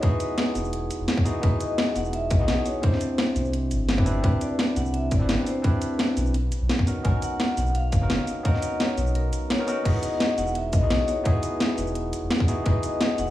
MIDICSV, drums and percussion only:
0, 0, Header, 1, 2, 480
1, 0, Start_track
1, 0, Tempo, 350877
1, 40, Time_signature, 4, 2, 24, 8
1, 18199, End_track
2, 0, Start_track
2, 0, Title_t, "Drums"
2, 36, Note_on_c, 9, 42, 82
2, 41, Note_on_c, 9, 36, 120
2, 173, Note_off_c, 9, 42, 0
2, 178, Note_off_c, 9, 36, 0
2, 276, Note_on_c, 9, 42, 95
2, 276, Note_on_c, 9, 69, 59
2, 413, Note_off_c, 9, 42, 0
2, 413, Note_off_c, 9, 69, 0
2, 516, Note_on_c, 9, 38, 116
2, 516, Note_on_c, 9, 42, 82
2, 653, Note_off_c, 9, 38, 0
2, 653, Note_off_c, 9, 42, 0
2, 757, Note_on_c, 9, 46, 76
2, 757, Note_on_c, 9, 69, 60
2, 885, Note_off_c, 9, 69, 0
2, 885, Note_on_c, 9, 69, 30
2, 894, Note_off_c, 9, 46, 0
2, 999, Note_on_c, 9, 42, 93
2, 1022, Note_off_c, 9, 69, 0
2, 1135, Note_off_c, 9, 42, 0
2, 1240, Note_on_c, 9, 42, 102
2, 1240, Note_on_c, 9, 69, 63
2, 1376, Note_off_c, 9, 42, 0
2, 1376, Note_off_c, 9, 69, 0
2, 1477, Note_on_c, 9, 38, 127
2, 1477, Note_on_c, 9, 42, 85
2, 1608, Note_on_c, 9, 36, 115
2, 1614, Note_off_c, 9, 38, 0
2, 1614, Note_off_c, 9, 42, 0
2, 1718, Note_on_c, 9, 46, 75
2, 1718, Note_on_c, 9, 69, 57
2, 1744, Note_off_c, 9, 36, 0
2, 1855, Note_off_c, 9, 46, 0
2, 1855, Note_off_c, 9, 69, 0
2, 1956, Note_on_c, 9, 42, 84
2, 1960, Note_on_c, 9, 36, 125
2, 2093, Note_off_c, 9, 42, 0
2, 2096, Note_off_c, 9, 36, 0
2, 2196, Note_on_c, 9, 42, 95
2, 2196, Note_on_c, 9, 69, 59
2, 2333, Note_off_c, 9, 42, 0
2, 2333, Note_off_c, 9, 69, 0
2, 2437, Note_on_c, 9, 38, 127
2, 2437, Note_on_c, 9, 42, 82
2, 2574, Note_off_c, 9, 38, 0
2, 2574, Note_off_c, 9, 42, 0
2, 2677, Note_on_c, 9, 46, 79
2, 2677, Note_on_c, 9, 69, 58
2, 2805, Note_off_c, 9, 69, 0
2, 2805, Note_on_c, 9, 69, 27
2, 2814, Note_off_c, 9, 46, 0
2, 2916, Note_on_c, 9, 42, 86
2, 2941, Note_off_c, 9, 69, 0
2, 3053, Note_off_c, 9, 42, 0
2, 3154, Note_on_c, 9, 42, 104
2, 3154, Note_on_c, 9, 69, 61
2, 3160, Note_on_c, 9, 36, 118
2, 3291, Note_off_c, 9, 42, 0
2, 3291, Note_off_c, 9, 69, 0
2, 3297, Note_off_c, 9, 36, 0
2, 3393, Note_on_c, 9, 38, 127
2, 3393, Note_on_c, 9, 42, 81
2, 3530, Note_off_c, 9, 38, 0
2, 3530, Note_off_c, 9, 42, 0
2, 3634, Note_on_c, 9, 46, 78
2, 3634, Note_on_c, 9, 69, 58
2, 3770, Note_off_c, 9, 46, 0
2, 3770, Note_off_c, 9, 69, 0
2, 3873, Note_on_c, 9, 42, 79
2, 3879, Note_on_c, 9, 36, 124
2, 4001, Note_on_c, 9, 38, 38
2, 4010, Note_off_c, 9, 42, 0
2, 4016, Note_off_c, 9, 36, 0
2, 4115, Note_on_c, 9, 42, 89
2, 4115, Note_on_c, 9, 69, 57
2, 4138, Note_off_c, 9, 38, 0
2, 4252, Note_off_c, 9, 42, 0
2, 4252, Note_off_c, 9, 69, 0
2, 4354, Note_on_c, 9, 38, 120
2, 4354, Note_on_c, 9, 42, 79
2, 4491, Note_off_c, 9, 38, 0
2, 4491, Note_off_c, 9, 42, 0
2, 4595, Note_on_c, 9, 46, 78
2, 4595, Note_on_c, 9, 69, 54
2, 4723, Note_off_c, 9, 69, 0
2, 4723, Note_on_c, 9, 69, 27
2, 4732, Note_off_c, 9, 46, 0
2, 4835, Note_on_c, 9, 42, 87
2, 4860, Note_off_c, 9, 69, 0
2, 4972, Note_off_c, 9, 42, 0
2, 5077, Note_on_c, 9, 42, 97
2, 5077, Note_on_c, 9, 69, 61
2, 5213, Note_off_c, 9, 42, 0
2, 5213, Note_off_c, 9, 69, 0
2, 5316, Note_on_c, 9, 38, 125
2, 5316, Note_on_c, 9, 42, 85
2, 5447, Note_on_c, 9, 36, 113
2, 5453, Note_off_c, 9, 38, 0
2, 5453, Note_off_c, 9, 42, 0
2, 5555, Note_on_c, 9, 46, 79
2, 5555, Note_on_c, 9, 69, 54
2, 5583, Note_off_c, 9, 36, 0
2, 5692, Note_off_c, 9, 46, 0
2, 5692, Note_off_c, 9, 69, 0
2, 5797, Note_on_c, 9, 42, 75
2, 5800, Note_on_c, 9, 36, 119
2, 5933, Note_off_c, 9, 42, 0
2, 5936, Note_off_c, 9, 36, 0
2, 6036, Note_on_c, 9, 42, 92
2, 6036, Note_on_c, 9, 69, 53
2, 6173, Note_off_c, 9, 42, 0
2, 6173, Note_off_c, 9, 69, 0
2, 6278, Note_on_c, 9, 38, 117
2, 6278, Note_on_c, 9, 42, 76
2, 6415, Note_off_c, 9, 38, 0
2, 6415, Note_off_c, 9, 42, 0
2, 6517, Note_on_c, 9, 46, 84
2, 6517, Note_on_c, 9, 69, 54
2, 6645, Note_off_c, 9, 69, 0
2, 6645, Note_on_c, 9, 69, 27
2, 6654, Note_off_c, 9, 46, 0
2, 6755, Note_on_c, 9, 42, 78
2, 6781, Note_off_c, 9, 69, 0
2, 6892, Note_off_c, 9, 42, 0
2, 6995, Note_on_c, 9, 42, 95
2, 6995, Note_on_c, 9, 69, 61
2, 7000, Note_on_c, 9, 36, 106
2, 7132, Note_off_c, 9, 42, 0
2, 7132, Note_off_c, 9, 69, 0
2, 7136, Note_off_c, 9, 36, 0
2, 7236, Note_on_c, 9, 38, 127
2, 7236, Note_on_c, 9, 42, 78
2, 7373, Note_off_c, 9, 38, 0
2, 7373, Note_off_c, 9, 42, 0
2, 7477, Note_on_c, 9, 46, 82
2, 7477, Note_on_c, 9, 69, 55
2, 7613, Note_off_c, 9, 46, 0
2, 7613, Note_off_c, 9, 69, 0
2, 7716, Note_on_c, 9, 42, 76
2, 7720, Note_on_c, 9, 36, 115
2, 7853, Note_off_c, 9, 42, 0
2, 7857, Note_off_c, 9, 36, 0
2, 7956, Note_on_c, 9, 42, 92
2, 7956, Note_on_c, 9, 69, 57
2, 8093, Note_off_c, 9, 42, 0
2, 8093, Note_off_c, 9, 69, 0
2, 8197, Note_on_c, 9, 38, 115
2, 8197, Note_on_c, 9, 42, 75
2, 8333, Note_off_c, 9, 38, 0
2, 8333, Note_off_c, 9, 42, 0
2, 8438, Note_on_c, 9, 46, 81
2, 8438, Note_on_c, 9, 69, 58
2, 8565, Note_off_c, 9, 69, 0
2, 8565, Note_on_c, 9, 69, 30
2, 8575, Note_off_c, 9, 46, 0
2, 8678, Note_on_c, 9, 42, 80
2, 8702, Note_off_c, 9, 69, 0
2, 8815, Note_off_c, 9, 42, 0
2, 8917, Note_on_c, 9, 42, 92
2, 8917, Note_on_c, 9, 69, 61
2, 9054, Note_off_c, 9, 42, 0
2, 9054, Note_off_c, 9, 69, 0
2, 9158, Note_on_c, 9, 38, 127
2, 9158, Note_on_c, 9, 42, 80
2, 9291, Note_on_c, 9, 36, 106
2, 9295, Note_off_c, 9, 38, 0
2, 9295, Note_off_c, 9, 42, 0
2, 9400, Note_on_c, 9, 46, 81
2, 9400, Note_on_c, 9, 69, 59
2, 9427, Note_off_c, 9, 36, 0
2, 9537, Note_off_c, 9, 46, 0
2, 9537, Note_off_c, 9, 69, 0
2, 9639, Note_on_c, 9, 42, 77
2, 9643, Note_on_c, 9, 36, 113
2, 9776, Note_off_c, 9, 42, 0
2, 9780, Note_off_c, 9, 36, 0
2, 9881, Note_on_c, 9, 42, 86
2, 9881, Note_on_c, 9, 69, 61
2, 10018, Note_off_c, 9, 42, 0
2, 10018, Note_off_c, 9, 69, 0
2, 10119, Note_on_c, 9, 38, 108
2, 10119, Note_on_c, 9, 42, 81
2, 10256, Note_off_c, 9, 38, 0
2, 10256, Note_off_c, 9, 42, 0
2, 10360, Note_on_c, 9, 46, 77
2, 10360, Note_on_c, 9, 69, 58
2, 10488, Note_off_c, 9, 69, 0
2, 10488, Note_on_c, 9, 69, 29
2, 10497, Note_off_c, 9, 46, 0
2, 10600, Note_on_c, 9, 42, 80
2, 10624, Note_off_c, 9, 69, 0
2, 10736, Note_off_c, 9, 42, 0
2, 10839, Note_on_c, 9, 42, 94
2, 10839, Note_on_c, 9, 69, 63
2, 10843, Note_on_c, 9, 36, 99
2, 10976, Note_off_c, 9, 42, 0
2, 10976, Note_off_c, 9, 69, 0
2, 10980, Note_off_c, 9, 36, 0
2, 11078, Note_on_c, 9, 38, 126
2, 11078, Note_on_c, 9, 42, 87
2, 11215, Note_off_c, 9, 38, 0
2, 11215, Note_off_c, 9, 42, 0
2, 11319, Note_on_c, 9, 46, 80
2, 11319, Note_on_c, 9, 69, 59
2, 11456, Note_off_c, 9, 46, 0
2, 11456, Note_off_c, 9, 69, 0
2, 11559, Note_on_c, 9, 42, 82
2, 11562, Note_on_c, 9, 36, 115
2, 11689, Note_on_c, 9, 38, 36
2, 11696, Note_off_c, 9, 42, 0
2, 11699, Note_off_c, 9, 36, 0
2, 11798, Note_on_c, 9, 42, 94
2, 11798, Note_on_c, 9, 69, 61
2, 11826, Note_off_c, 9, 38, 0
2, 11935, Note_off_c, 9, 42, 0
2, 11935, Note_off_c, 9, 69, 0
2, 12039, Note_on_c, 9, 38, 115
2, 12039, Note_on_c, 9, 42, 80
2, 12176, Note_off_c, 9, 38, 0
2, 12176, Note_off_c, 9, 42, 0
2, 12279, Note_on_c, 9, 46, 73
2, 12279, Note_on_c, 9, 69, 61
2, 12407, Note_off_c, 9, 69, 0
2, 12407, Note_on_c, 9, 69, 30
2, 12416, Note_off_c, 9, 46, 0
2, 12520, Note_on_c, 9, 42, 84
2, 12544, Note_off_c, 9, 69, 0
2, 12657, Note_off_c, 9, 42, 0
2, 12760, Note_on_c, 9, 42, 95
2, 12760, Note_on_c, 9, 69, 66
2, 12897, Note_off_c, 9, 42, 0
2, 12897, Note_off_c, 9, 69, 0
2, 13000, Note_on_c, 9, 38, 122
2, 13000, Note_on_c, 9, 42, 84
2, 13136, Note_off_c, 9, 38, 0
2, 13136, Note_off_c, 9, 42, 0
2, 13239, Note_on_c, 9, 46, 78
2, 13239, Note_on_c, 9, 69, 62
2, 13376, Note_off_c, 9, 46, 0
2, 13376, Note_off_c, 9, 69, 0
2, 13480, Note_on_c, 9, 42, 79
2, 13480, Note_on_c, 9, 49, 76
2, 13481, Note_on_c, 9, 36, 117
2, 13617, Note_off_c, 9, 36, 0
2, 13617, Note_off_c, 9, 42, 0
2, 13617, Note_off_c, 9, 49, 0
2, 13719, Note_on_c, 9, 42, 98
2, 13719, Note_on_c, 9, 69, 62
2, 13856, Note_off_c, 9, 42, 0
2, 13856, Note_off_c, 9, 69, 0
2, 13958, Note_on_c, 9, 38, 118
2, 13958, Note_on_c, 9, 42, 84
2, 14095, Note_off_c, 9, 38, 0
2, 14095, Note_off_c, 9, 42, 0
2, 14197, Note_on_c, 9, 46, 76
2, 14197, Note_on_c, 9, 69, 62
2, 14325, Note_off_c, 9, 69, 0
2, 14325, Note_on_c, 9, 69, 32
2, 14334, Note_off_c, 9, 46, 0
2, 14435, Note_on_c, 9, 42, 86
2, 14462, Note_off_c, 9, 69, 0
2, 14572, Note_off_c, 9, 42, 0
2, 14676, Note_on_c, 9, 42, 101
2, 14676, Note_on_c, 9, 69, 66
2, 14679, Note_on_c, 9, 36, 111
2, 14813, Note_off_c, 9, 42, 0
2, 14813, Note_off_c, 9, 69, 0
2, 14816, Note_off_c, 9, 36, 0
2, 14917, Note_on_c, 9, 38, 127
2, 14917, Note_on_c, 9, 42, 88
2, 15054, Note_off_c, 9, 38, 0
2, 15054, Note_off_c, 9, 42, 0
2, 15157, Note_on_c, 9, 46, 69
2, 15157, Note_on_c, 9, 69, 58
2, 15294, Note_off_c, 9, 46, 0
2, 15294, Note_off_c, 9, 69, 0
2, 15395, Note_on_c, 9, 42, 81
2, 15399, Note_on_c, 9, 36, 121
2, 15532, Note_off_c, 9, 42, 0
2, 15536, Note_off_c, 9, 36, 0
2, 15635, Note_on_c, 9, 42, 98
2, 15635, Note_on_c, 9, 69, 59
2, 15772, Note_off_c, 9, 42, 0
2, 15772, Note_off_c, 9, 69, 0
2, 15875, Note_on_c, 9, 38, 126
2, 15875, Note_on_c, 9, 42, 82
2, 16011, Note_off_c, 9, 38, 0
2, 16011, Note_off_c, 9, 42, 0
2, 16113, Note_on_c, 9, 46, 74
2, 16113, Note_on_c, 9, 69, 59
2, 16241, Note_off_c, 9, 69, 0
2, 16241, Note_on_c, 9, 69, 29
2, 16250, Note_off_c, 9, 46, 0
2, 16352, Note_on_c, 9, 42, 84
2, 16377, Note_off_c, 9, 69, 0
2, 16489, Note_off_c, 9, 42, 0
2, 16594, Note_on_c, 9, 42, 105
2, 16594, Note_on_c, 9, 69, 61
2, 16731, Note_off_c, 9, 42, 0
2, 16731, Note_off_c, 9, 69, 0
2, 16834, Note_on_c, 9, 38, 127
2, 16834, Note_on_c, 9, 42, 89
2, 16967, Note_on_c, 9, 36, 114
2, 16970, Note_off_c, 9, 38, 0
2, 16970, Note_off_c, 9, 42, 0
2, 17075, Note_on_c, 9, 46, 75
2, 17075, Note_on_c, 9, 69, 58
2, 17104, Note_off_c, 9, 36, 0
2, 17212, Note_off_c, 9, 46, 0
2, 17212, Note_off_c, 9, 69, 0
2, 17314, Note_on_c, 9, 42, 80
2, 17320, Note_on_c, 9, 36, 124
2, 17451, Note_off_c, 9, 42, 0
2, 17457, Note_off_c, 9, 36, 0
2, 17554, Note_on_c, 9, 42, 93
2, 17554, Note_on_c, 9, 69, 58
2, 17691, Note_off_c, 9, 42, 0
2, 17691, Note_off_c, 9, 69, 0
2, 17792, Note_on_c, 9, 38, 125
2, 17792, Note_on_c, 9, 42, 78
2, 17929, Note_off_c, 9, 38, 0
2, 17929, Note_off_c, 9, 42, 0
2, 18034, Note_on_c, 9, 46, 76
2, 18034, Note_on_c, 9, 69, 56
2, 18171, Note_off_c, 9, 46, 0
2, 18171, Note_off_c, 9, 69, 0
2, 18199, End_track
0, 0, End_of_file